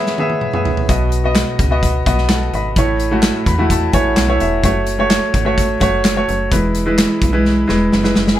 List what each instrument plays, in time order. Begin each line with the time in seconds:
Already playing: grand piano E3 B3 G#4 C#5 E5
0.06 snare
0.18 grand piano B3 G#4 E5, high tom
0.30 high tom
0.41 mid tom
0.53 grand piano B3 G#4 E5, mid tom
0.65 floor tom
0.77 floor tom
0.88 fm bass B1, grand piano B2 B3 F#4 D#5, kick, closed hi-hat
1.12 closed hi-hat
1.24 grand piano B3 F#4 D#5
1.35 snare, clap, closed hi-hat
1.59 fm bass C#2, kick, closed hi-hat
1.71 grand piano B3 F#4 D#5
1.83 kick, closed hi-hat
2.06 fm bass B1, grand piano B3 F#4 D#5, kick, closed hi-hat
2.18 snare
2.29 grand piano A4 F#5, snare, clap, closed hi-hat
2.53 fm bass G#1, grand piano D#5 B5, closed hi-hat
2.76 fm bass A1, grand piano A2 A3 E4 C#5, kick, closed hi-hat
3.00 closed hi-hat
3.11 grand piano A3 E4 F#4
3.23 snare, clap, closed hi-hat
3.46 fm bass E2, grand piano B5, kick, closed hi-hat
3.58 grand piano A3 E4 F#4
3.70 grand piano A5, kick, closed hi-hat
3.93 fm bass A1, grand piano A3 E4 C#5 G#5, kick, closed hi-hat
4.17 fm bass B1, grand piano F#5, snare, clap, closed hi-hat
4.28 grand piano A3 E4 C#5
4.40 fm bass E1, grand piano E5, closed hi-hat
4.63 fm bass F#1, grand piano A3 F#4 C#5, kick, closed hi-hat
4.87 closed hi-hat
4.99 grand piano A3 F#4 C#5
5.10 snare, clap, closed hi-hat
5.34 fm bass G#1, kick, closed hi-hat
5.45 grand piano A3 F#4 C#5
5.58 kick, closed hi-hat
5.80 fm bass F#1, grand piano A3 F#4 C#5, kick, closed hi-hat
6.05 snare, clap, closed hi-hat
6.16 grand piano A3 F#4 C#5
6.29 fm bass F#1, closed hi-hat
6.51 fm bass E1, grand piano E3 G#3 E4 B4, kick, closed hi-hat
6.75 closed hi-hat
6.86 grand piano G#3 E4 B4
6.98 snare, clap, closed hi-hat
7.22 fm bass B1, kick, closed hi-hat
7.32 grand piano G#3 E4 B4
7.45 snare
7.68 fm bass E1, grand piano G#3 E4 B4, snare
7.92 fm bass F#1, snare
8.03 grand piano G#3 E4 B4, snare
8.15 fm bass F#1, snare
8.28 snare